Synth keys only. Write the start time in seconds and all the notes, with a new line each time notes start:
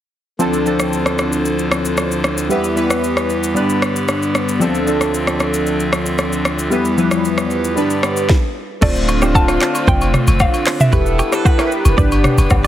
0.39 F3 C4 D4 A4
0.65 F3 C4 D4 A4
2.49 G3 B3 E4 B4
2.75 G3 B3 E4 B4
3.54 G3 B3 D4 B4
4.59 F3 C4 D4 A4
4.86 F3 C4 D4 A4
6.70 G3 B3 E4 B4
6.97 F3 B3 E4 B4
7.03 G3
7.76 G3 B3 D4 B4
8.81 A3 C4 D4 F4 C5
9.21 A3 C4 D4 F4 C5
9.47 A3 C4 D4 F4 C5
10.91 E4 G4 B4
11.31 E4 G4 B4
11.58 E4 G4 A#4
11.67 B4
11.97 D4 G4 B4